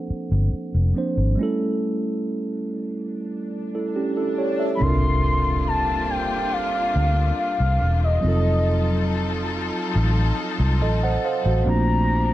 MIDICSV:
0, 0, Header, 1, 8, 480
1, 0, Start_track
1, 0, Tempo, 857143
1, 773, Time_signature, 4, 2, 24, 8
1, 6908, End_track
2, 0, Start_track
2, 0, Title_t, "Soft synth lead"
2, 0, Program_c, 0, 80
2, 2660, Note_on_c, 0, 83, 78
2, 2698, Note_on_c, 0, 84, 119
2, 2706, Note_off_c, 0, 83, 0
2, 3173, Note_off_c, 0, 84, 0
2, 3177, Note_on_c, 0, 81, 109
2, 3417, Note_on_c, 0, 79, 104
2, 3425, Note_off_c, 0, 81, 0
2, 3655, Note_on_c, 0, 77, 108
2, 3663, Note_off_c, 0, 79, 0
2, 4132, Note_off_c, 0, 77, 0
2, 4136, Note_on_c, 0, 77, 100
2, 4472, Note_off_c, 0, 77, 0
2, 4499, Note_on_c, 0, 75, 87
2, 5434, Note_off_c, 0, 75, 0
2, 6541, Note_on_c, 0, 82, 103
2, 6908, Note_off_c, 0, 82, 0
2, 6908, End_track
3, 0, Start_track
3, 0, Title_t, "Tine electric piano"
3, 0, Program_c, 1, 4
3, 0, Control_c, 1, 64, 127
3, 0, Note_on_c, 1, 53, 75
3, 0, Note_on_c, 1, 58, 68
3, 0, Note_on_c, 1, 60, 68
3, 0, Note_on_c, 1, 62, 69
3, 0, Note_on_c, 1, 69, 81
3, 503, Note_off_c, 1, 53, 0
3, 509, Note_off_c, 1, 58, 0
3, 514, Note_off_c, 1, 60, 0
3, 519, Note_off_c, 1, 62, 0
3, 529, Note_on_c, 1, 53, 53
3, 535, Note_on_c, 1, 58, 49
3, 540, Note_on_c, 1, 60, 49
3, 542, Note_off_c, 1, 69, 0
3, 544, Note_on_c, 1, 62, 49
3, 550, Note_on_c, 1, 72, 58
3, 759, Note_on_c, 1, 55, 72
3, 769, Note_on_c, 1, 57, 70
3, 771, Note_off_c, 1, 53, 0
3, 774, Note_off_c, 1, 58, 0
3, 776, Note_off_c, 1, 60, 0
3, 779, Note_off_c, 1, 62, 0
3, 779, Note_on_c, 1, 61, 71
3, 780, Control_c, 1, 64, 0
3, 781, Note_off_c, 1, 72, 0
3, 790, Note_on_c, 1, 64, 69
3, 800, Note_on_c, 1, 69, 84
3, 881, Control_c, 1, 64, 127
3, 1954, Note_off_c, 1, 61, 0
3, 1959, Note_off_c, 1, 64, 0
3, 1964, Note_off_c, 1, 69, 0
3, 2100, Note_on_c, 1, 69, 59
3, 2103, Note_on_c, 1, 64, 50
3, 2211, Note_off_c, 1, 69, 0
3, 2212, Note_off_c, 1, 64, 0
3, 2218, Note_on_c, 1, 67, 65
3, 2221, Note_on_c, 1, 61, 58
3, 2330, Note_off_c, 1, 67, 0
3, 2331, Note_off_c, 1, 61, 0
3, 2335, Note_on_c, 1, 69, 72
3, 2338, Note_on_c, 1, 64, 60
3, 2448, Note_off_c, 1, 69, 0
3, 2450, Note_off_c, 1, 64, 0
3, 2455, Note_on_c, 1, 73, 69
3, 2457, Note_on_c, 1, 67, 55
3, 2568, Note_off_c, 1, 73, 0
3, 2569, Note_off_c, 1, 67, 0
3, 2573, Note_on_c, 1, 76, 61
3, 2577, Note_on_c, 1, 69, 52
3, 2663, Note_off_c, 1, 55, 0
3, 2669, Note_off_c, 1, 57, 0
3, 2673, Note_on_c, 1, 55, 70
3, 2683, Note_on_c, 1, 60, 64
3, 2694, Note_on_c, 1, 62, 63
3, 2701, Control_c, 1, 64, 0
3, 2705, Note_on_c, 1, 64, 50
3, 2714, Note_on_c, 1, 70, 75
3, 2735, Note_off_c, 1, 64, 0
3, 2741, Note_on_c, 1, 65, 64
3, 2801, Note_off_c, 1, 76, 0
3, 2803, Note_off_c, 1, 69, 0
3, 2803, Control_c, 1, 64, 127
3, 4581, Note_off_c, 1, 55, 0
3, 4586, Note_off_c, 1, 60, 0
3, 4591, Note_off_c, 1, 62, 0
3, 4596, Note_on_c, 1, 54, 71
3, 4601, Note_off_c, 1, 70, 0
3, 4606, Note_on_c, 1, 60, 66
3, 4615, Note_off_c, 1, 65, 0
3, 4617, Note_on_c, 1, 63, 63
3, 4619, Control_c, 1, 64, 0
3, 4627, Note_on_c, 1, 65, 63
3, 4637, Note_on_c, 1, 69, 75
3, 4712, Control_c, 1, 64, 127
3, 6038, Note_off_c, 1, 65, 0
3, 6043, Note_off_c, 1, 69, 0
3, 6059, Note_on_c, 1, 75, 67
3, 6063, Note_on_c, 1, 69, 60
3, 6170, Note_off_c, 1, 75, 0
3, 6172, Note_off_c, 1, 69, 0
3, 6179, Note_on_c, 1, 78, 73
3, 6183, Note_on_c, 1, 72, 63
3, 6290, Note_off_c, 1, 78, 0
3, 6292, Note_off_c, 1, 72, 0
3, 6299, Note_on_c, 1, 77, 76
3, 6303, Note_on_c, 1, 72, 63
3, 6410, Note_off_c, 1, 77, 0
3, 6413, Note_off_c, 1, 72, 0
3, 6419, Note_on_c, 1, 72, 65
3, 6422, Note_on_c, 1, 66, 55
3, 6502, Note_off_c, 1, 54, 0
3, 6507, Note_off_c, 1, 60, 0
3, 6513, Note_off_c, 1, 63, 0
3, 6520, Note_on_c, 1, 58, 70
3, 6530, Note_on_c, 1, 60, 64
3, 6540, Note_on_c, 1, 62, 64
3, 6541, Control_c, 1, 64, 0
3, 6550, Note_on_c, 1, 65, 64
3, 6562, Note_on_c, 1, 57, 76
3, 6644, Note_off_c, 1, 72, 0
3, 6645, Control_c, 1, 64, 127
3, 6646, Note_off_c, 1, 66, 0
3, 6908, Note_off_c, 1, 57, 0
3, 6908, Note_off_c, 1, 58, 0
3, 6908, Note_off_c, 1, 60, 0
3, 6908, Note_off_c, 1, 62, 0
3, 6908, Note_off_c, 1, 65, 0
3, 6908, End_track
4, 0, Start_track
4, 0, Title_t, "String section"
4, 0, Program_c, 2, 48
4, 2692, Note_on_c, 2, 58, 68
4, 2694, Note_on_c, 2, 48, 67
4, 2694, Note_on_c, 2, 62, 68
4, 2696, Note_on_c, 2, 65, 79
4, 4594, Note_off_c, 2, 48, 0
4, 4594, Note_off_c, 2, 58, 0
4, 4594, Note_off_c, 2, 62, 0
4, 4595, Note_off_c, 2, 65, 0
4, 4617, Note_on_c, 2, 63, 65
4, 4618, Note_on_c, 2, 65, 70
4, 4618, Note_on_c, 2, 69, 80
4, 4619, Note_on_c, 2, 54, 68
4, 6516, Note_off_c, 2, 63, 0
4, 6516, Note_off_c, 2, 69, 0
4, 6517, Note_off_c, 2, 54, 0
4, 6517, Note_off_c, 2, 65, 0
4, 6537, Note_on_c, 2, 53, 75
4, 6537, Note_on_c, 2, 62, 79
4, 6538, Note_on_c, 2, 46, 68
4, 6908, Note_off_c, 2, 46, 0
4, 6908, Note_off_c, 2, 53, 0
4, 6908, Note_off_c, 2, 62, 0
4, 6908, End_track
5, 0, Start_track
5, 0, Title_t, "Fingered electric bass"
5, 0, Program_c, 3, 33
5, 177, Note_on_c, 3, 31, 95
5, 274, Note_off_c, 3, 31, 0
5, 417, Note_on_c, 3, 29, 79
5, 514, Note_off_c, 3, 29, 0
5, 658, Note_on_c, 3, 32, 89
5, 754, Note_off_c, 3, 32, 0
5, 2697, Note_on_c, 3, 36, 97
5, 3513, Note_off_c, 3, 36, 0
5, 3896, Note_on_c, 3, 38, 88
5, 4092, Note_off_c, 3, 38, 0
5, 4257, Note_on_c, 3, 36, 89
5, 4354, Note_off_c, 3, 36, 0
5, 4378, Note_on_c, 3, 28, 92
5, 4573, Note_off_c, 3, 28, 0
5, 4616, Note_on_c, 3, 29, 111
5, 5432, Note_off_c, 3, 29, 0
5, 5575, Note_on_c, 3, 33, 96
5, 5771, Note_off_c, 3, 33, 0
5, 5934, Note_on_c, 3, 36, 100
5, 6057, Note_off_c, 3, 36, 0
5, 6057, Note_on_c, 3, 33, 103
5, 6252, Note_off_c, 3, 33, 0
5, 6416, Note_on_c, 3, 33, 97
5, 6513, Note_off_c, 3, 33, 0
5, 6535, Note_on_c, 3, 34, 113
5, 6908, Note_off_c, 3, 34, 0
5, 6908, End_track
6, 0, Start_track
6, 0, Title_t, "Impact"
6, 0, Program_c, 4, 103
6, 2692, Note_on_c, 4, 60, 85
6, 4613, Note_off_c, 4, 60, 0
6, 6908, End_track
7, 0, Start_track
7, 0, Title_t, "Swell"
7, 0, Program_c, 5, 103
7, 773, Note_on_c, 5, 60, 84
7, 2693, Note_off_c, 5, 60, 0
7, 6908, End_track
8, 0, Start_track
8, 0, Title_t, "Muted fingered electric bass strokes"
8, 58, Note_on_c, 9, 29, 45
8, 114, Note_off_c, 9, 29, 0
8, 297, Note_on_c, 9, 29, 47
8, 353, Note_off_c, 9, 29, 0
8, 6908, End_track
0, 0, End_of_file